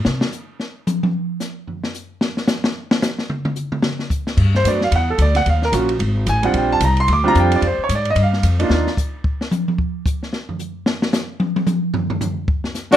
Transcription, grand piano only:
4.56 4.66 C5 medium
4.65 4.80 A3 soft
4.65 4.80 B3 soft
4.65 4.80 D4 soft
4.65 4.80 F#4 soft
4.65 4.82 D5 medium
4.84 4.93 F5 medium
4.96 5.10 F#5 medium
5.10 5.20 A4 medium
5.22 5.36 D5 medium
5.36 5.47 F#5 loud
5.49 5.64 F5 medium
5.65 5.71 A#4 loud
5.73 5.88 A#3 medium
5.73 5.88 C#4 medium
5.73 5.88 F4 soft
5.73 5.88 F#4 medium
6.29 6.44 G#5 medium
6.42 6.79 G3 medium
6.42 6.79 C4 medium
6.42 6.80 D4 medium
6.42 6.80 F4 medium
6.42 6.55 F#5 medium
6.58 6.72 G5 medium
6.72 6.82 A5 loud
6.85 6.99 A#5 medium
7.00 7.10 C6 loud
7.13 7.27 D6 medium
7.24 7.60 G3 medium
7.24 7.60 C4 medium
7.24 7.60 D4 medium
7.24 7.61 F4 medium
7.28 7.37 A#5 loud
7.40 7.54 G5 medium
7.56 7.64 D5 medium
7.67 7.81 C5 medium
7.84 7.92 C#5 medium
7.95 8.08 D5 medium
8.10 8.19 D#5 medium
8.23 8.45 F5 medium
8.59 8.87 A#3 medium
8.59 8.87 D4 medium
8.59 8.87 D#4 medium
8.59 8.87 F4 medium
12.92 12.97 G2 medium
12.92 12.97 F#3 medium
12.92 12.97 A3 medium
12.92 12.97 B3 medium

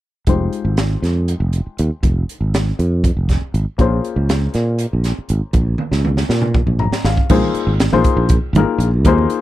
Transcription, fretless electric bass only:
0.27 0.47 F1 medium
0.65 0.95 G#1 medium
1.02 1.33 F2 medium
1.40 1.60 F1 medium
1.67 muted fretless electric bass stroke soft
1.79 1.89 D#2 medium
2.03 2.23 F1 medium
2.41 2.71 G#1 medium
2.79 3.09 F2 medium
3.17 3.37 F1 medium
3.42 muted fretless electric bass stroke soft
3.54 3.64 G#1 medium
3.79 3.99 A#1 medium
4.16 4.47 C#2 medium
4.55 4.85 A#2 medium
4.93 5.13 A#1 medium
5.18 muted fretless electric bass stroke soft
5.30 5.40 G#1 medium
5.53 5.74 A#1 medium
5.91 6.22 C#2 medium
6.29 6.60 A#2 medium
6.67 6.87 A#1 medium
6.91 muted fretless electric bass stroke soft
7.04 7.15 G#1 medium
7.30 7.40 A#1 medium
7.54 muted fretless electric bass stroke soft
7.67 7.87 G#1 medium
7.92 8.02 A#1 medium
8.17 8.37 A#1 medium
8.53 8.64 G#1 medium
8.78 9.04 A#1 medium
9.04 9.25 D#2 medium

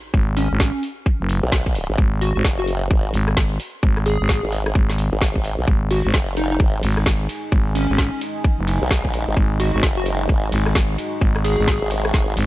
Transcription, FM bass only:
0.14 0.49 G#1 loud
0.51 0.72 G#1 loud
1.20 1.41 F#1 loud
1.98 2.33 G#1 loud
2.35 2.43 G#1 loud
3.14 3.58 G#1 loud
3.83 4.18 G#1 loud
4.20 4.41 G#1 medium
4.75 5.10 G#1 medium
5.68 6.03 G#1 medium
6.05 6.12 G#1 loud
6.83 7.28 G#1 loud
7.52 7.87 G#1 loud
7.89 8.10 G#1 loud
8.59 8.79 F#1 medium
9.37 9.72 G#1 loud
9.74 9.82 G#1 loud
10.52 10.97 G#1 loud
11.21 11.56 G#1 loud
11.59 11.79 G#1 loud
12.37 12.46 G#1 loud

